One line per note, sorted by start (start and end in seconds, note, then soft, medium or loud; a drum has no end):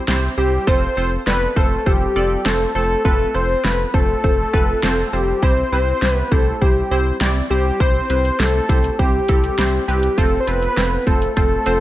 0.08 0.29 C2 loud
0.08 0.33 C4 loud
0.08 0.33 E4 medium
0.08 0.33 G4 medium
0.08 0.33 C5 loud
0.08 snare loud
0.38 0.58 C2 loud
0.38 0.63 C4 medium
0.38 0.63 E4 medium
0.38 0.63 G4 medium
0.38 0.69 G4 loud
0.38 0.63 C5 medium
0.67 0.88 F1 loud
0.67 0.93 C4 loud
0.67 0.93 F4 medium
0.67 0.93 A4 medium
0.67 0.96 C5 loud
0.67 0.93 C5 loud
0.67 kick loud
0.97 1.18 F1 loud
0.97 1.22 C4 medium
0.97 1.22 F4 medium
0.97 1.22 A4 medium
0.97 1.10 C5 loud
0.97 1.22 C5 medium
1.27 1.48 F1 loud
1.27 1.52 C4 medium
1.27 1.52 F4 medium
1.27 1.52 A4 medium
1.27 1.58 B4 loud
1.27 1.52 D5 medium
1.27 snare loud
1.56 1.77 F1 medium
1.56 1.82 C4 medium
1.56 1.82 F4 medium
1.56 1.82 A4 medium
1.56 1.88 A4 loud
1.56 1.82 C5 medium
1.56 kick medium
1.86 2.07 F1 loud
1.86 2.12 C4 medium
1.86 2.12 F4 medium
1.86 2.47 G4 loud
1.86 2.12 A4 medium
1.86 2.12 C5 medium
1.86 kick medium
2.16 2.37 F1 medium
2.16 2.41 C4 medium
2.16 2.41 F4 medium
2.16 2.41 A4 medium
2.16 2.41 D5 loud
2.45 2.66 F1 loud
2.45 2.71 C4 medium
2.45 2.71 F4 medium
2.45 2.71 A4 medium
2.45 2.75 A4 loud
2.45 2.71 C5 loud
2.45 snare loud
2.75 2.96 F1 loud
2.75 3.01 C4 medium
2.75 3.01 F4 medium
2.75 3.03 A4 loud
2.75 3.01 A4 medium
2.75 3.01 C5 medium
3.05 3.26 F1 loud
3.05 3.30 C4 loud
3.05 3.30 F4 medium
3.05 3.36 A4 loud
3.05 3.30 A4 medium
3.05 3.30 B4 loud
3.05 kick loud
3.34 3.56 F1 loud
3.34 3.60 C4 medium
3.34 3.60 F4 medium
3.34 3.60 A4 medium
3.34 3.60 C5 medium
3.34 3.66 C5 loud
3.64 3.85 F1 loud
3.64 3.90 C4 medium
3.64 3.90 F4 medium
3.64 3.90 A4 medium
3.64 3.94 B4 loud
3.64 3.90 C5 medium
3.64 snare loud
3.94 4.15 F1 loud
3.94 4.19 C4 medium
3.94 4.19 F4 medium
3.94 4.19 A4 medium
3.94 5.14 A4 loud
3.94 4.19 C5 medium
3.94 kick medium
4.24 4.45 F1 loud
4.24 4.49 C4 medium
4.24 4.49 F4 medium
4.24 4.49 A4 medium
4.24 4.49 C5 medium
4.24 kick medium
4.53 4.74 F1 loud
4.53 4.79 C4 medium
4.53 4.79 F4 medium
4.53 4.79 A4 medium
4.53 4.79 B4 loud
4.53 kick medium
4.83 5.04 F1 loud
4.83 5.09 C4 loud
4.83 5.09 F4 loud
4.83 5.09 A4 loud
4.83 5.09 C5 loud
4.83 snare loud
5.13 5.34 F1 loud
5.13 5.38 C4 medium
5.13 5.38 F4 medium
5.13 5.44 G4 medium
5.13 5.38 A4 medium
5.13 5.38 C5 medium
5.43 5.63 C2 loud
5.43 5.68 C4 medium
5.43 5.68 E4 medium
5.43 5.68 G4 medium
5.43 5.68 C5 loud
5.43 5.72 C5 loud
5.43 kick loud
5.72 5.93 C2 medium
5.72 5.98 C4 medium
5.72 5.98 E4 medium
5.72 5.98 G4 medium
5.72 6.12 C5 loud
5.72 5.98 C5 medium
6.02 6.23 C2 loud
6.02 6.27 C4 medium
6.02 6.27 E4 medium
6.02 6.27 G4 medium
6.02 6.27 C5 medium
6.02 snare loud
6.12 6.33 B4 loud
6.32 6.52 C2 medium
6.32 6.57 C4 medium
6.32 6.57 E4 medium
6.32 6.57 G4 medium
6.32 6.63 A4 medium
6.32 6.57 C5 medium
6.32 kick medium
6.61 6.82 C2 loud
6.61 6.87 C4 medium
6.61 6.87 E4 medium
6.61 7.21 G4 medium
6.61 6.87 G4 medium
6.61 6.87 C5 medium
6.61 kick medium
6.91 7.12 C2 loud
6.91 7.17 C4 medium
6.91 7.17 E4 medium
6.91 7.17 G4 medium
6.91 7.17 C5 loud
7.21 7.42 C2 loud
7.21 7.46 C4 loud
7.21 7.46 E4 medium
7.21 7.46 G4 medium
7.21 7.46 D5 loud
7.21 snare loud
7.50 7.71 C2 loud
7.50 7.76 C4 medium
7.50 7.76 E4 medium
7.50 7.82 G4 loud
7.50 7.76 G4 medium
7.50 7.76 C5 medium
7.80 8.01 C2 loud
7.80 8.06 C4 loud
7.80 8.06 E4 medium
7.80 8.06 G4 medium
7.80 8.09 C5 loud
7.80 8.06 C5 loud
7.80 kick loud
7.80 closed hi-hat medium
8.10 8.31 C2 loud
8.10 8.35 C4 medium
8.10 8.35 E4 medium
8.10 8.35 G4 medium
8.10 8.35 B4 medium
8.10 8.41 C5 loud
8.10 closed hi-hat medium
8.25 closed hi-hat soft
8.40 8.60 C2 loud
8.40 8.65 C4 medium
8.40 8.65 E4 medium
8.40 8.65 G4 medium
8.40 8.98 A4 loud
8.40 8.65 C5 medium
8.40 snare loud
8.40 closed hi-hat medium
8.69 8.90 C2 medium
8.69 8.95 C4 medium
8.69 8.95 E4 medium
8.69 8.95 G4 medium
8.69 8.95 C5 medium
8.69 kick medium
8.69 closed hi-hat medium
8.84 closed hi-hat medium
8.99 9.20 C2 loud
8.99 9.24 C4 medium
8.99 9.24 E4 medium
8.99 9.84 G4 loud
8.99 9.24 G4 medium
8.99 9.24 C5 medium
8.99 kick medium
8.99 closed hi-hat medium
9.28 9.50 C2 loud
9.28 9.54 C4 medium
9.28 9.54 E4 medium
9.28 9.54 G4 medium
9.28 9.54 A4 loud
9.28 kick medium
9.28 closed hi-hat medium
9.44 closed hi-hat soft
9.58 9.79 C2 loud
9.58 9.84 C4 loud
9.58 9.84 E4 medium
9.58 9.84 G4 medium
9.58 9.84 C5 loud
9.58 snare loud
9.58 closed hi-hat medium
9.88 10.09 C2 loud
9.88 10.14 C4 medium
9.88 10.14 E4 medium
9.88 10.19 G4 loud
9.88 10.14 G4 medium
9.88 10.14 B4 medium
9.88 closed hi-hat medium
10.03 closed hi-hat medium
10.17 10.39 F1 loud
10.17 10.43 C4 medium
10.17 10.43 F4 medium
10.17 10.40 A4 loud
10.17 10.43 A4 medium
10.17 10.43 C5 loud
10.17 kick loud
10.17 closed hi-hat medium
10.40 10.49 C5 medium
10.47 10.68 F1 medium
10.47 10.73 C4 medium
10.47 10.73 F4 medium
10.47 10.73 A4 medium
10.47 11.08 B4 loud
10.47 10.73 C5 medium
10.47 closed hi-hat medium
10.62 closed hi-hat soft
10.77 10.98 F1 loud
10.77 11.03 C4 medium
10.77 11.03 F4 medium
10.77 11.03 A4 medium
10.77 11.03 C5 medium
10.77 snare loud
10.77 closed hi-hat medium
11.06 11.28 F1 medium
11.06 11.32 C4 medium
11.06 11.32 F4 medium
11.06 11.35 A4 loud
11.06 11.32 A4 medium
11.06 11.32 C5 medium
11.06 kick medium
11.06 closed hi-hat medium
11.22 closed hi-hat medium
11.36 11.58 F1 loud
11.36 11.62 C4 medium
11.36 11.62 F4 medium
11.36 11.80 A4 loud
11.36 11.62 A4 medium
11.36 11.62 C5 medium
11.36 kick medium
11.36 closed hi-hat medium
11.66 11.80 F1 loud
11.66 11.80 C4 medium
11.66 11.80 F4 medium
11.66 11.80 A4 medium
11.66 11.80 C5 loud
11.66 closed hi-hat medium